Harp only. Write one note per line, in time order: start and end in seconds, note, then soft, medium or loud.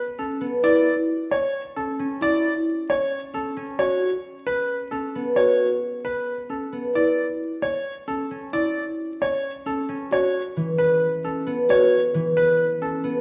0.00 0.40 B3 medium
0.00 0.65 C#4 medium
0.41 0.65 B3 medium
1.99 3.55 C#4 medium
3.57 6.97 C#4 medium
5.15 6.71 B3 medium
6.72 6.97 B3 soft
8.31 9.88 C#4 medium
9.89 13.21 C#4 medium
10.56 12.13 E3 medium
11.46 13.03 B3 medium
12.14 13.21 E3 medium
13.04 13.21 B3 medium